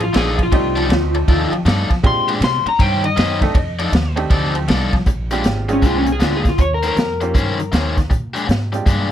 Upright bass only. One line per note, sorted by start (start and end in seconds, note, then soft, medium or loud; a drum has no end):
0.00 0.13 A1 medium
0.15 0.51 A#1 medium
0.52 0.89 C2 medium
0.89 1.26 D2 loud
1.28 1.51 D#2 medium
1.52 muted upright bass stroke soft
1.65 1.88 G2 loud
2.04 2.40 A#2 medium
2.41 2.64 C3 medium
2.65 muted upright bass stroke soft
2.79 3.16 G2 medium
3.17 3.54 F#2 loud
3.55 3.92 F2 medium
3.92 4.29 D#2 medium
4.30 4.67 D2 medium
4.69 5.05 C2 loud
5.06 5.43 A#1 medium
5.45 5.82 G#1 medium
5.82 6.19 C2 medium
6.20 6.57 D2 medium
6.58 6.95 D#2 medium
6.96 7.33 F2 medium
7.35 7.71 G2 medium
7.72 8.09 D#2 medium
8.11 8.47 A#2 medium
8.48 8.85 G#2 medium
8.86 9.12 G2 medium